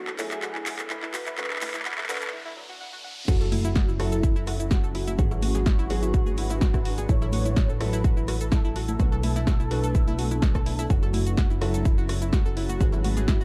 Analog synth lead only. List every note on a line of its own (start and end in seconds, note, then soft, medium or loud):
0.19 0.81 G#4 loud
0.90 2.33 B4 loud
3.28 3.91 F#4 loud
4.00 4.62 E4 loud
4.71 7.00 F#4 loud
7.09 7.72 C#5 loud
7.80 8.43 B4 loud
8.52 10.92 A4 loud
10.90 11.63 F#4 loud
11.61 12.24 E4 loud
12.33 13.44 F#4 loud